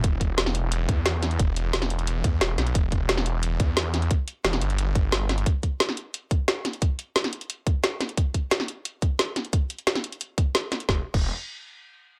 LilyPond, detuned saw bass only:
\new Staff \with { instrumentName = "Detuned saw bass" } { \clef bass \time 4/4 \key e \minor \tempo 4 = 177 e,,2~ e,,8 e,4. | e,,2~ e,,8 e,8 e,,8 b,,8 | e,,2~ e,,8 e,4. | r4 e,,8 g,,2~ g,,8 |
r1 | r1 | r1 | r1 |
e,,16 r8 e,,8 r2 r8. | }